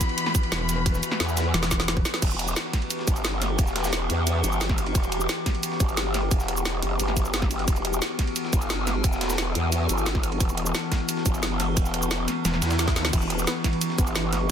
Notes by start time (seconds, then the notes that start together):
Already playing: E3 B3 E4 F#4 B4 B5
0.01 kick, snare, closed hi-hat, ride, shaker
0.09 ride
0.18 closed hi-hat, ride
0.26 snare
0.35 kick, closed hi-hat, ride, shaker
0.43 ride
0.52 E1, snare, closed hi-hat, ride
0.69 snare, closed hi-hat, ride, shaker
0.86 kick, closed hi-hat, ride
0.94 snare, shaker
1.03 closed hi-hat, ride, shaker
1.12 snare
1.20 E2, snare, closed hi-hat, ride
1.29 shaker
1.37 snare, closed hi-hat, ride, shaker
1.54 E1, snare, closed hi-hat, ride
1.63 snare, ride, shaker
1.71 kick, snare, closed hi-hat, shaker
1.80 snare, ride
1.88 snare, closed hi-hat, ride
1.97 kick, ride
2.05 snare, closed hi-hat, ride, shaker
2.14 snare, ride
2.22 E1 E3 B3 F#4 G4, kick, closed hi-hat, ride, crash, shaker
2.31 ride, shaker
2.39 closed hi-hat, ride
2.48 shaker
2.56 snare, closed hi-hat, ride, shaker
2.73 kick, snare, closed hi-hat, ride
2.82 ride
2.90 closed hi-hat, ride, shaker
2.99 snare
3.08 G1, kick, closed hi-hat, ride, shaker
3.16 ride, shaker
3.25 snare, closed hi-hat, ride, shaker
3.42 snare, closed hi-hat, ride, shaker
3.59 E1, kick, closed hi-hat, ride, shaker
3.67 snare, shaker
3.76 snare, closed hi-hat, ride
3.84 snare, ride, shaker
3.93 snare, closed hi-hat, ride, shaker
4.10 E2, closed hi-hat, ride
4.27 closed hi-hat, ride, shaker
4.44 G1, closed hi-hat, ride, shaker
4.52 shaker
4.61 snare, closed hi-hat, ride, shaker
4.69 kick, snare
4.78 closed hi-hat, ride, shaker
4.86 ride
4.95 E1, kick, closed hi-hat, ride, shaker
5.03 ride, shaker
5.12 closed hi-hat, ride
5.21 shaker
5.29 snare, closed hi-hat, ride, shaker
5.46 kick, snare, closed hi-hat, ride
5.55 ride
5.63 closed hi-hat, ride, shaker
5.72 snare
5.80 G1, kick, closed hi-hat, ride, shaker
5.89 ride, shaker
5.97 snare, closed hi-hat, ride, shaker
6.14 snare, closed hi-hat, ride, shaker
6.31 E1, kick, closed hi-hat, ride, shaker
6.40 snare, shaker
6.48 closed hi-hat, ride
6.57 shaker
6.65 snare, closed hi-hat, ride, shaker
6.82 F#1, closed hi-hat, ride
7.00 G1, closed hi-hat, ride, shaker
7.08 snare
7.17 kick, closed hi-hat, ride, shaker
7.25 shaker
7.34 snare, closed hi-hat, ride, shaker
7.42 kick, snare
7.51 closed hi-hat, ride, shaker
7.59 ride
7.68 E1 A4, kick, closed hi-hat, ride, shaker
7.76 ride, shaker
7.85 closed hi-hat, ride
7.93 shaker
8.02 snare, closed hi-hat, ride, shaker
8.19 kick, snare, closed hi-hat, ride
8.27 ride
8.36 closed hi-hat, ride, shaker
8.44 snare
8.53 G1, kick, closed hi-hat, ride, shaker
8.61 ride, shaker
8.70 snare, closed hi-hat, ride, shaker
8.87 snare, closed hi-hat, ride, shaker
9.04 E1, kick, closed hi-hat, ride, shaker
9.13 snare, shaker
9.21 snare, closed hi-hat, ride
9.30 snare, ride, shaker
9.38 snare, closed hi-hat, ride, shaker
9.55 E2, closed hi-hat, ride
9.72 closed hi-hat, ride, shaker
9.89 G1, closed hi-hat, ride, shaker
9.98 shaker
10.06 snare, closed hi-hat, ride, shaker
10.15 kick, snare
10.23 closed hi-hat, ride, shaker
10.32 ride
10.40 E1, kick, closed hi-hat, ride, shaker
10.49 ride, shaker
10.58 closed hi-hat, ride
10.66 shaker
10.75 snare, closed hi-hat, ride, shaker
10.92 kick, snare, closed hi-hat, ride
11.09 closed hi-hat, ride, shaker
11.17 snare
11.26 G1, kick, closed hi-hat, ride, shaker
11.34 ride, shaker
11.43 snare, closed hi-hat, ride, shaker
11.60 snare, closed hi-hat, ride, shaker
11.77 E1, kick, closed hi-hat, ride, shaker
11.85 snare, shaker
11.94 closed hi-hat, ride
12.02 shaker
12.11 snare, closed hi-hat, ride, shaker
12.28 snare, closed hi-hat, ride, shaker
12.45 E1, snare, closed hi-hat, ride, swell, shaker
12.54 snare
12.62 E2, snare, closed hi-hat, ride, shaker
12.71 snare, ride, shaker
12.79 snare, closed hi-hat, ride, shaker
12.88 kick, snare, ride
12.96 snare, closed hi-hat, ride, shaker
13.05 snare
13.13 E1 E3 G4, kick, closed hi-hat, crash, ride, shaker
13.22 ride, shaker
13.30 closed hi-hat, ride
13.39 shaker
13.47 B3, snare, closed hi-hat, ride, shaker
13.64 E3, kick, snare, closed hi-hat, ride
13.73 ride
13.81 closed hi-hat, ride, shaker
13.90 snare
13.98 G1 B3, kick, closed hi-hat, ride, shaker
14.07 ride, shaker
14.15 E3, snare, closed hi-hat, ride, shaker
14.33 snare, closed hi-hat, ride, shaker